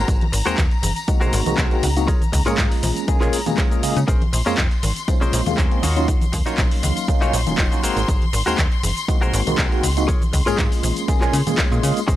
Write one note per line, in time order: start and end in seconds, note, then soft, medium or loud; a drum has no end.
0.00 0.24 F#4 medium
0.00 0.24 G#4 medium
0.00 0.24 A#4 medium
0.00 0.24 C5 medium
0.00 4.09 A#5 medium
0.08 0.17 G#1 loud
0.08 kick loud
0.08 closed hi-hat medium
0.08 tambourine medium
0.08 cabasa soft
0.21 closed hi-hat soft
0.21 tambourine soft
0.21 high conga loud
0.32 0.42 G#1 loud
0.32 muted clean electric guitar stroke medium
0.32 open hi-hat loud
0.32 cabasa medium
0.46 0.60 G#3 medium
0.46 0.60 A#3 medium
0.46 0.61 C4 medium
0.46 0.61 D#4 medium
0.46 0.58 F#4 medium
0.46 0.61 F#4 medium
0.46 0.58 G#4 medium
0.46 0.58 A#4 medium
0.46 0.58 C5 loud
0.46 closed hi-hat medium
0.46 tambourine medium
0.46 cabasa soft
0.58 0.67 D#2 loud
0.58 kick loud
0.58 clap loud
0.58 closed hi-hat medium
0.58 tambourine medium
0.58 cabasa soft
0.71 muted clean electric guitar stroke soft
0.71 closed hi-hat soft
0.71 tambourine soft
0.83 0.92 F#1 medium
0.83 muted clean electric guitar stroke soft
0.83 open hi-hat loud
0.83 high conga medium
0.83 cabasa medium
0.96 closed hi-hat medium
0.96 tambourine medium
0.96 cabasa soft
1.08 1.43 G#3 medium
1.08 1.43 A#3 medium
1.08 1.43 C4 medium
1.08 1.43 D#4 medium
1.08 1.43 F#4 loud
1.08 kick loud
1.08 closed hi-hat medium
1.08 tambourine medium
1.08 cabasa soft
1.21 1.40 F#4 loud
1.21 1.40 G#4 medium
1.21 1.40 A#4 loud
1.21 1.40 C5 loud
1.21 closed hi-hat soft
1.21 tambourine soft
1.21 low conga medium
1.21 cabasa soft
1.33 1.42 G#1 loud
1.33 open hi-hat loud
1.33 cabasa medium
1.46 1.68 G#3 medium
1.46 1.68 A#3 medium
1.46 1.68 C4 medium
1.46 1.69 D#4 medium
1.46 1.69 F#4 medium
1.46 closed hi-hat medium
1.46 tambourine medium
1.46 high conga loud
1.46 low conga medium
1.46 cabasa soft
1.57 1.67 C2 medium
1.57 1.83 F#4 medium
1.57 1.83 G#4 medium
1.57 1.83 A#4 medium
1.57 1.83 C5 medium
1.57 kick loud
1.57 clap loud
1.57 closed hi-hat medium
1.57 tambourine medium
1.57 cabasa soft
1.71 1.85 G#3 medium
1.71 1.86 A#3 medium
1.71 1.86 C4 medium
1.71 1.86 D#4 medium
1.71 1.86 F#4 loud
1.71 closed hi-hat soft
1.71 tambourine soft
1.83 2.15 C#2 loud
1.83 open hi-hat loud
1.83 cabasa medium
1.96 2.07 G#3 medium
1.96 2.07 A#3 medium
1.96 2.07 C4 medium
1.96 2.07 D#4 medium
1.96 2.07 F#4 loud
1.96 closed hi-hat medium
1.96 tambourine medium
1.96 cabasa soft
2.08 2.21 F4 loud
2.08 2.21 G#4 medium
2.08 2.22 A#4 loud
2.08 2.22 C#5 loud
2.08 kick loud
2.08 closed hi-hat medium
2.08 tambourine medium
2.08 cabasa soft
2.21 closed hi-hat soft
2.21 tambourine soft
2.21 high conga loud
2.21 cabasa soft
2.32 2.42 C#2 loud
2.32 muted clean electric guitar stroke medium
2.32 kick medium
2.32 open hi-hat loud
2.32 cabasa medium
2.45 2.56 G#2 soft
2.45 3.05 G#3 medium
2.45 3.05 A#3 medium
2.45 3.05 C#4 medium
2.45 2.58 F4 medium
2.45 3.06 F4 medium
2.45 2.58 G#4 medium
2.45 3.06 G#4 loud
2.45 2.58 A#4 medium
2.45 2.58 C#5 medium
2.45 closed hi-hat soft
2.45 tambourine medium
2.45 cabasa soft
2.58 2.67 G#2 loud
2.58 kick loud
2.58 clap loud
2.58 closed hi-hat medium
2.58 tambourine medium
2.58 cabasa soft
2.71 muted clean electric guitar stroke soft
2.71 open hi-hat medium
2.71 tambourine soft
2.83 2.92 A#1 medium
2.83 muted clean electric guitar stroke soft
2.83 open hi-hat loud
2.83 high conga medium
2.83 cabasa medium
2.96 closed hi-hat medium
2.96 tambourine medium
2.96 cabasa soft
3.08 3.19 G#3 medium
3.08 3.19 A#3 medium
3.08 3.20 C#4 medium
3.08 3.20 F4 medium
3.08 3.20 G#4 loud
3.08 kick loud
3.08 closed hi-hat medium
3.08 tambourine medium
3.08 cabasa soft
3.21 3.35 G#3 loud
3.21 3.35 A#3 medium
3.21 3.35 C#4 medium
3.21 3.40 F4 loud
3.21 3.36 F4 medium
3.21 3.40 G#4 medium
3.21 3.36 G#4 loud
3.21 3.40 A#4 loud
3.21 3.40 C#5 loud
3.21 clap soft
3.21 closed hi-hat soft
3.21 tambourine soft
3.21 low conga medium
3.21 cabasa soft
3.33 open hi-hat loud
3.33 cabasa medium
3.46 3.68 G#3 medium
3.46 3.68 A#3 medium
3.46 3.68 C#4 medium
3.46 3.69 F4 medium
3.46 3.69 G#4 medium
3.46 closed hi-hat soft
3.46 tambourine medium
3.46 high conga medium
3.46 low conga medium
3.46 cabasa soft
3.58 3.83 F4 medium
3.58 3.83 G#4 medium
3.58 3.83 A#4 medium
3.58 3.83 C#5 medium
3.58 kick loud
3.58 clap loud
3.58 closed hi-hat medium
3.58 tambourine medium
3.58 cabasa soft
3.71 3.80 G#3 medium
3.71 3.80 A#3 medium
3.71 3.80 C#4 medium
3.71 3.81 F4 medium
3.71 3.81 G#4 medium
3.71 closed hi-hat soft
3.71 tambourine soft
3.71 cabasa soft
3.83 3.94 C#3 soft
3.83 3.98 G#3 medium
3.83 3.99 A#3 medium
3.83 3.99 C#4 medium
3.83 3.99 F4 medium
3.83 3.99 G#4 medium
3.83 open hi-hat loud
3.83 cabasa medium
3.96 4.05 C#3 medium
3.96 closed hi-hat medium
3.96 tambourine medium
3.96 cabasa soft
4.08 4.17 A#1 loud
4.08 4.21 C#4 loud
4.08 4.22 G#4 medium
4.08 4.22 A#4 loud
4.08 4.22 C5 loud
4.08 12.07 C6 medium
4.08 kick loud
4.08 closed hi-hat medium
4.08 tambourine medium
4.08 cabasa soft
4.21 closed hi-hat soft
4.21 tambourine soft
4.21 high conga loud
4.33 4.42 A#1 loud
4.33 muted clean electric guitar stroke medium
4.33 open hi-hat loud
4.33 cabasa medium
4.46 4.56 F2 soft
4.46 4.60 G#3 medium
4.46 4.61 A#3 medium
4.46 4.61 C4 medium
4.46 4.58 C#4 medium
4.46 4.61 C#4 medium
4.46 4.61 F4 medium
4.46 4.58 G#4 medium
4.46 4.58 A#4 medium
4.46 4.59 C5 medium
4.46 closed hi-hat soft
4.46 tambourine medium
4.46 cabasa soft
4.58 4.67 F2 loud
4.58 kick loud
4.58 clap loud
4.58 closed hi-hat medium
4.58 cabasa soft
4.71 muted clean electric guitar stroke soft
4.71 closed hi-hat soft
4.71 tambourine soft
4.83 4.92 G#1 medium
4.83 muted clean electric guitar stroke soft
4.83 open hi-hat loud
4.83 high conga medium
4.83 cabasa medium
4.96 closed hi-hat medium
4.96 tambourine medium
4.96 cabasa soft
5.08 5.43 G#3 medium
5.08 5.43 A#3 medium
5.08 5.44 C#4 medium
5.08 5.44 F4 loud
5.08 5.43 C5 medium
5.08 kick loud
5.08 closed hi-hat medium
5.08 tambourine medium
5.08 cabasa soft
5.21 5.40 C#4 loud
5.21 5.40 G#4 loud
5.21 5.40 A#4 medium
5.21 5.40 C5 loud
5.21 closed hi-hat soft
5.21 tambourine soft
5.21 low conga medium
5.21 cabasa soft
5.33 5.42 A#1 loud
5.33 open hi-hat loud
5.33 cabasa medium
5.46 5.56 D#2 soft
5.46 5.68 G#3 medium
5.46 5.68 A#3 medium
5.46 5.68 C4 medium
5.46 5.69 C#4 medium
5.46 5.69 F4 medium
5.46 closed hi-hat medium
5.46 tambourine medium
5.46 high conga medium
5.46 low conga medium
5.46 cabasa soft
5.58 5.67 D#2 medium
5.58 5.82 C#4 medium
5.58 5.83 G#4 medium
5.58 5.83 A#4 medium
5.58 5.83 C5 medium
5.58 kick loud
5.58 clap loud
5.58 closed hi-hat medium
5.58 cabasa soft
5.71 5.82 G#3 medium
5.71 5.82 A#3 medium
5.71 5.82 C4 medium
5.71 5.82 C#4 medium
5.71 5.82 F4 medium
5.71 closed hi-hat soft
5.71 tambourine soft
5.83 6.15 D#2 medium
5.83 6.24 D#4 loud
5.83 6.24 F4 medium
5.83 6.24 F#4 medium
5.83 6.24 C#5 medium
5.83 open hi-hat loud
5.83 cabasa medium
5.96 6.10 F#3 medium
5.96 6.10 A#3 medium
5.96 6.11 C#4 medium
5.96 6.11 D#4 medium
5.96 6.11 F4 loud
5.96 closed hi-hat medium
5.96 tambourine medium
5.96 cabasa soft
6.08 kick loud
6.08 closed hi-hat medium
6.08 tambourine medium
6.08 cabasa soft
6.21 closed hi-hat soft
6.21 tambourine soft
6.21 high conga medium
6.21 cabasa soft
6.32 6.43 D#2 loud
6.32 muted clean electric guitar stroke medium
6.32 kick medium
6.32 open hi-hat loud
6.32 cabasa medium
6.46 6.56 A#1 soft
6.46 7.05 F#3 medium
6.46 7.05 A#3 medium
6.46 7.05 C#4 medium
6.46 6.58 D#4 medium
6.46 7.06 D#4 medium
6.46 6.58 F4 medium
6.46 6.58 F#4 medium
6.46 6.58 C#5 medium
6.46 7.06 F5 loud
6.46 closed hi-hat medium
6.46 tambourine medium
6.46 cabasa soft
6.58 6.67 A#1 loud
6.58 kick loud
6.58 clap loud
6.58 closed hi-hat medium
6.58 tambourine medium
6.58 cabasa soft
6.71 muted clean electric guitar stroke soft
6.71 open hi-hat medium
6.71 tambourine soft
6.83 6.92 C#2 medium
6.83 muted clean electric guitar stroke soft
6.83 open hi-hat loud
6.83 high conga medium
6.83 cabasa medium
6.97 closed hi-hat medium
6.97 tambourine medium
6.97 cabasa soft
7.08 7.19 F#3 loud
7.08 7.20 A#3 medium
7.08 7.20 C#4 medium
7.08 7.20 D#4 medium
7.08 7.20 F4 loud
7.08 kick loud
7.08 closed hi-hat medium
7.08 tambourine medium
7.08 cabasa soft
7.21 7.35 F#3 loud
7.21 7.36 A#3 medium
7.21 7.36 C#4 medium
7.21 7.40 D#4 loud
7.21 7.36 D#4 medium
7.21 7.40 F4 medium
7.21 7.36 F4 loud
7.21 7.40 F#4 loud
7.21 7.40 C#5 loud
7.21 clap soft
7.21 closed hi-hat soft
7.21 tambourine soft
7.21 low conga medium
7.21 cabasa soft
7.33 7.46 A#1 loud
7.33 open hi-hat loud
7.33 cabasa medium
7.46 7.56 D#1 soft
7.46 7.68 F#3 medium
7.46 7.68 A#3 medium
7.46 7.68 C#4 medium
7.46 7.68 D#4 medium
7.46 7.69 F4 medium
7.46 closed hi-hat medium
7.46 tambourine medium
7.46 high conga loud
7.46 low conga medium
7.46 cabasa soft
7.58 7.67 D#1 loud
7.58 7.82 D#4 medium
7.58 7.83 F4 medium
7.58 7.82 F#4 medium
7.58 7.84 C#5 medium
7.58 kick loud
7.58 clap loud
7.58 closed hi-hat medium
7.58 tambourine medium
7.58 cabasa soft
7.71 7.80 F#3 medium
7.71 7.80 A#3 medium
7.71 7.81 C#4 medium
7.71 7.81 D#4 medium
7.71 7.81 F4 medium
7.71 closed hi-hat soft
7.71 tambourine soft
7.71 cabasa soft
7.83 7.94 G#1 soft
7.83 7.99 G#3 medium
7.83 7.99 A#3 medium
7.83 7.99 C4 medium
7.83 7.99 D#4 medium
7.83 8.24 F#4 loud
7.83 7.99 F#4 medium
7.83 8.24 G#4 medium
7.83 8.24 A#4 medium
7.83 8.24 C5 loud
7.83 open hi-hat loud
7.83 cabasa medium
7.96 8.05 G#1 medium
7.96 closed hi-hat medium
7.96 tambourine medium
7.96 cabasa soft
8.08 8.18 G#1 loud
8.08 kick loud
8.08 closed hi-hat medium
8.08 tambourine medium
8.08 cabasa medium
8.22 closed hi-hat soft
8.22 tambourine soft
8.22 high conga medium
8.33 8.43 G#1 loud
8.33 muted clean electric guitar stroke medium
8.33 open hi-hat loud
8.33 cabasa medium
8.46 8.56 D#2 soft
8.46 8.60 G#3 medium
8.46 8.61 A#3 medium
8.46 8.61 C4 medium
8.46 8.61 D#4 medium
8.46 8.58 F#4 medium
8.46 8.61 F#4 medium
8.46 8.58 G#4 medium
8.46 8.58 A#4 medium
8.46 8.59 C5 medium
8.46 closed hi-hat medium
8.46 tambourine medium
8.46 cabasa soft
8.58 8.68 D#2 loud
8.58 kick loud
8.58 clap loud
8.58 closed hi-hat medium
8.58 tambourine medium
8.58 cabasa soft
8.72 muted clean electric guitar stroke soft
8.72 closed hi-hat soft
8.72 tambourine soft
8.83 8.93 F#1 medium
8.83 muted clean electric guitar stroke soft
8.83 open hi-hat loud
8.83 high conga medium
8.83 cabasa medium
8.97 closed hi-hat medium
8.97 tambourine medium
8.97 cabasa soft
9.08 9.43 G#3 medium
9.08 9.43 A#3 medium
9.08 9.44 C4 medium
9.08 9.44 D#4 medium
9.08 9.44 F#4 loud
9.08 kick loud
9.08 closed hi-hat medium
9.08 tambourine medium
9.08 cabasa soft
9.21 9.40 F#4 loud
9.21 9.40 G#4 medium
9.21 9.40 A#4 loud
9.21 9.40 C5 loud
9.21 closed hi-hat soft
9.21 tambourine soft
9.21 low conga medium
9.21 cabasa soft
9.33 9.42 G#1 loud
9.33 open hi-hat loud
9.33 cabasa medium
9.47 9.68 G#3 medium
9.47 9.69 A#3 medium
9.47 9.69 C4 medium
9.47 9.69 D#4 medium
9.47 9.69 F#4 medium
9.47 closed hi-hat medium
9.47 tambourine medium
9.47 high conga medium
9.47 low conga medium
9.47 cabasa soft
9.58 9.68 C2 medium
9.58 9.83 F#4 medium
9.58 9.83 G#4 medium
9.58 9.84 A#4 medium
9.58 9.84 C5 medium
9.58 kick loud
9.58 clap loud
9.58 closed hi-hat medium
9.58 tambourine medium
9.58 cabasa soft
9.72 9.86 G#3 medium
9.72 9.86 A#3 medium
9.72 9.86 C4 medium
9.72 9.86 D#4 medium
9.72 9.86 F#4 loud
9.72 closed hi-hat soft
9.72 tambourine soft
9.83 10.15 C#2 medium
9.83 open hi-hat loud
9.83 cabasa medium
9.96 10.07 G#3 medium
9.96 10.07 A#3 medium
9.96 10.07 C4 medium
9.96 10.07 D#4 medium
9.96 10.07 F#4 loud
9.96 closed hi-hat medium
9.96 tambourine medium
9.96 cabasa soft
10.08 10.21 F4 loud
10.08 10.22 G#4 loud
10.08 10.22 A#4 medium
10.08 10.22 C#5 loud
10.08 kick loud
10.08 closed hi-hat medium
10.08 cabasa soft
10.21 closed hi-hat soft
10.21 tambourine soft
10.21 high conga medium
10.21 cabasa soft
10.33 10.43 C#2 loud
10.33 muted clean electric guitar stroke medium
10.33 kick medium
10.33 open hi-hat loud
10.33 cabasa medium
10.46 10.56 G#2 soft
10.46 11.05 G#3 medium
10.46 11.05 A#3 medium
10.46 11.06 C#4 medium
10.46 10.58 F4 medium
10.46 11.06 F4 medium
10.46 10.58 G#4 medium
10.46 11.06 G#4 loud
10.46 10.58 A#4 medium
10.46 10.59 C#5 loud
10.46 closed hi-hat medium
10.46 tambourine medium
10.46 cabasa soft
10.58 10.68 G#2 loud
10.58 kick loud
10.58 clap loud
10.58 closed hi-hat medium
10.58 tambourine medium
10.58 cabasa soft
10.71 muted clean electric guitar stroke soft
10.71 open hi-hat medium
10.71 tambourine soft
10.71 cabasa soft
10.83 10.93 A#1 medium
10.83 muted clean electric guitar stroke soft
10.83 open hi-hat loud
10.83 high conga medium
10.83 cabasa medium
10.96 closed hi-hat medium
10.96 tambourine medium
10.96 cabasa soft
11.08 11.20 G#3 medium
11.08 11.20 A#3 medium
11.08 11.20 C#4 medium
11.08 11.20 F4 medium
11.08 11.20 G#4 loud
11.08 kick loud
11.08 closed hi-hat medium
11.08 tambourine medium
11.08 cabasa soft
11.21 11.36 G#3 medium
11.21 11.36 A#3 medium
11.21 11.36 C#4 medium
11.21 11.40 F4 loud
11.21 11.36 F4 medium
11.21 11.40 G#4 loud
11.21 11.36 G#4 loud
11.21 11.40 A#4 medium
11.21 11.40 C#5 loud
11.21 clap soft
11.21 closed hi-hat soft
11.21 tambourine soft
11.21 low conga medium
11.21 cabasa soft
11.33 11.42 C#3 medium
11.33 open hi-hat loud
11.33 cabasa medium
11.46 11.68 G#3 medium
11.46 11.68 A#3 medium
11.46 11.69 C#4 medium
11.46 11.69 F4 medium
11.46 11.69 G#4 medium
11.46 closed hi-hat medium
11.46 tambourine medium
11.46 high conga medium
11.46 low conga medium
11.46 cabasa soft
11.57 11.83 F4 medium
11.57 11.83 G#4 medium
11.57 11.83 A#4 medium
11.57 11.84 C#5 medium
11.57 kick loud
11.57 clap loud
11.57 closed hi-hat medium
11.57 tambourine medium
11.57 cabasa soft
11.71 11.80 A#2 medium
11.71 11.80 G#3 medium
11.71 11.80 A#3 medium
11.71 11.80 C#4 medium
11.71 11.81 F4 medium
11.71 11.81 G#4 medium
11.71 closed hi-hat soft
11.71 tambourine soft
11.71 cabasa soft
11.83 11.92 C#3 medium
11.83 11.98 G#3 medium
11.83 11.99 A#3 medium
11.83 11.99 C#4 medium
11.83 11.99 F4 medium
11.83 11.99 G#4 medium
11.83 open hi-hat loud
11.83 cabasa medium
11.96 closed hi-hat medium
11.96 tambourine medium
11.96 cabasa soft
12.08 12.16 A#1 loud
12.08 12.16 C#4 loud
12.08 12.16 G#4 loud
12.08 12.16 A#4 medium
12.08 12.16 C5 loud
12.08 12.16 C6 medium
12.08 kick loud
12.08 closed hi-hat medium
12.08 tambourine medium
12.08 cabasa soft